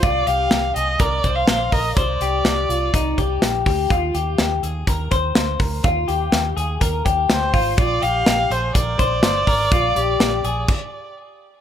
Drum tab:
CC |--------|--------|--------|--------|
HH |xxxxxxxo|xxxxxxxo|xxxxxxxo|xxxxxxxo|
SD |--o---o-|--o---o-|--o---o-|--o---o-|
BD |o---oo-o|o---oo-o|o---oo-o|o---oo-o|

CC |--------|----x---|
HH |xxxxxxxo|xxxx----|
SD |--o---o-|--o-----|
BD |o---oo-o|o---o---|